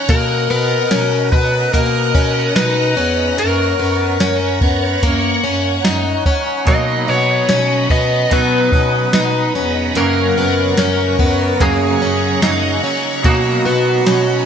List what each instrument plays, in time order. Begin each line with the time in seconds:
Already playing: string machine F#5 A#5
0.09 bass clarinet B2, twelve-string acoustic guitar A#3, electric slide guitar A#4, string machine D#5, kick, closed hi-hat
0.50 bass clarinet B2, twelve-string acoustic guitar B3, electric slide guitar A#4
0.91 bass clarinet B2, twelve-string acoustic guitar C#4, snare, closed hi-hat
1.32 bass clarinet B2, twelve-string acoustic guitar B3, electric slide guitar B4, kick
1.73 bass clarinet B2, twelve-string acoustic guitar A#3, electric slide guitar A#4, kick, closed hi-hat
2.15 bass clarinet B2, twelve-string acoustic guitar C#4, kick
2.56 bass clarinet B2, twelve-string acoustic guitar D#4, electric slide guitar B4, snare, closed hi-hat
2.97 bass clarinet E2, twelve-string acoustic guitar C#4
3.38 bass clarinet F#2, twelve-string acoustic guitar A#3, electric slide guitar A#4, string machine C#5 C#6, closed hi-hat
3.79 bass clarinet F#2, twelve-string acoustic guitar B3
4.20 bass clarinet F#2, twelve-string acoustic guitar C#4, snare, closed hi-hat
4.61 bass clarinet F#2, twelve-string acoustic guitar B3, kick
5.03 bass clarinet F#2, twelve-string acoustic guitar A#3, kick, closed hi-hat
5.44 bass clarinet F#2, twelve-string acoustic guitar C#4
5.84 bass clarinet F#2, twelve-string acoustic guitar D#4, snare, closed hi-hat
6.26 twelve-string acoustic guitar C#4, kick
6.65 clean electric guitar B2 F#3, bass clarinet B2, twelve-string acoustic guitar A#3, string machine D#5 B5, electric slide guitar D#5, kick, closed hi-hat
6.69 clean electric guitar A#3 D#4
7.08 bass clarinet B2, twelve-string acoustic guitar B3, electric slide guitar C#5
7.49 bass clarinet B2, twelve-string acoustic guitar C#4, snare, closed hi-hat
7.90 bass clarinet B2, twelve-string acoustic guitar B3, electric slide guitar D#5, kick
8.30 clean electric guitar B2 F#3, bass clarinet B2, twelve-string acoustic guitar B3, electric slide guitar B4, kick, closed hi-hat
8.36 clean electric guitar D#4
8.72 bass clarinet B2, twelve-string acoustic guitar C#4, kick
9.13 bass clarinet B2, twelve-string acoustic guitar D#4, snare, closed hi-hat
9.55 bass clarinet E2, twelve-string acoustic guitar C#4
9.95 clean electric guitar F#2 C#3 F#3, bass clarinet F#2, twelve-string acoustic guitar A#3, electric slide guitar A#4, string machine C#5 A#5 C#6, closed hi-hat
9.99 clean electric guitar A#3 C#4
10.37 bass clarinet F#2, twelve-string acoustic guitar B3
10.77 bass clarinet F#2, twelve-string acoustic guitar C#4, snare, closed hi-hat
11.19 bass clarinet F#2, twelve-string acoustic guitar B3, kick
11.60 clean electric guitar F#2 C#3 F#3 A#3 C#4, bass clarinet F#2, twelve-string acoustic guitar A#3, electric slide guitar G#4, kick, closed hi-hat
12.02 bass clarinet F#2, twelve-string acoustic guitar C#4
12.41 bass clarinet F#2, clean electric guitar C#3 F#3 A#3 C#4, twelve-string acoustic guitar D#4, snare, closed hi-hat
12.84 twelve-string acoustic guitar C#4
13.23 clean electric guitar B2 F#3, bass clarinet B2, twelve-string acoustic guitar A#3, electric slide guitar F#4, string machine D#5 F#5 B5, kick, closed hi-hat
13.27 clean electric guitar A#3 D#4
13.65 bass clarinet B2, twelve-string acoustic guitar B3, electric slide guitar F#4
14.06 bass clarinet B2, twelve-string acoustic guitar C#4, snare, closed hi-hat